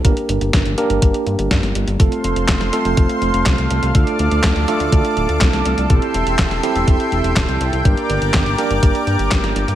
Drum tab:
HH |xxxxxxxxxxxxxxxx|xxxxxxxxxxxxxxxx|xxxxxxxxxxxxxxxx|xxxxxxxxxxxxxxxx|
CP |----------------|----x-------x---|----x-------x---|----x-------x---|
SD |----o-------oo--|----oo------o---|----o-------oo--|----oo------o---|
BD |o---o---o---o---|o---o---o---o---|o---o---o---o---|o---o---o---o---|

HH |xxxxxxxxxxxxxxxx|
CP |----x-------x---|
SD |----o-------oo--|
BD |o---o---o---o---|